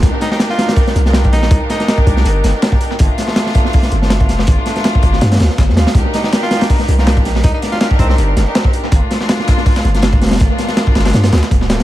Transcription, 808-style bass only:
X:1
M:4/4
L:1/16
Q:"Swing 16ths" 1/4=162
K:Cm
V:1 name="808-style bass" clef=bass
C,, z8 z C,,4 B,,,2 | C,, z4 z C,,2 G,,,2 G,,, z4 z | G,,, z8 z G,,,4 F,,,2 | G,,, z4 z G,,,2 G,,2 D,, z G,,, G,, D,, z |
C,, z8 z C,,4 B,,,2 | C,, z4 z C,,2 G,,,2 G,,, z4 z | G,,, z8 z G,,,4 F,,,2 | G,,, z4 z G,,,2 G,,2 D,, z D,,,4 |]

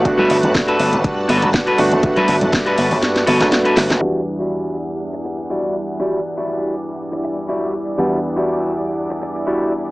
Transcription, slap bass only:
X:1
M:4/4
L:1/16
Q:"Swing 16ths" 1/4=121
K:Em
V:1 name="Slap bass" clef=bass
G,, z G,,, G,,, G,,2 G,,, G,,, G,,2 G,,, G,,, G,, z G,,, G,,, | G,, z G,,, G,,, G,,2 G,,, G,,, G,,2 G,,, G,,, G,, z G,,, G,,, | z16 | z16 |
z16 |]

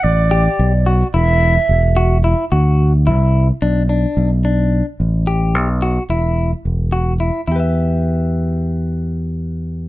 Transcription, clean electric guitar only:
X:1
M:9/8
L:1/8
Q:3/8=73
K:Em
V:1 name="Clean electric guitar"
z G2 F E2 z F E | F2 E2 D D2 D2 | z G2 F E2 z F E | [EGBe]8- [EGBe] |]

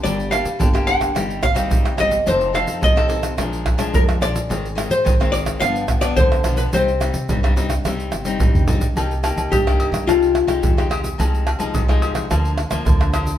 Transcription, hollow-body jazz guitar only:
X:1
M:4/4
L:1/16
Q:1/4=108
K:Cm
V:1 name="Hollow-body jazz guitar"
d2 f4 g4 f4 e2 | c2 f2 e4 z4 B2 d2- | d3 c3 d2 f3 d c3 =B | c12 z4 |
z4 G4 F6 z2 | z16 |]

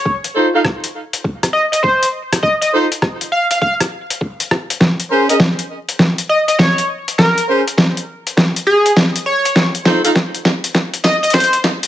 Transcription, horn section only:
X:1
M:4/4
L:1/16
Q:"Swing 16ths" 1/4=101
K:Bbm
V:1 name="Horn section"
z2 [EF=Ac] [EFAf] z12 | z2 [EF=Ac] z12 z | z2 [DABc] [DABe] z12 | z2 [DABc] z12 z |
z2 [EF=Ac] [EFAf] z12 |]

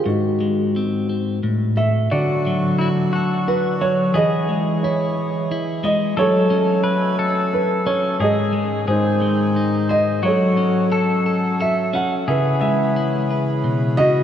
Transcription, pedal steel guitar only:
X:1
M:3/4
L:1/8
Q:1/4=88
K:C#m
V:1 name="Pedal steel guitar"
z6 | F2 E F3 | G6 | A2 B A3 |
G2 G3 z | F2 A4 | G6 |]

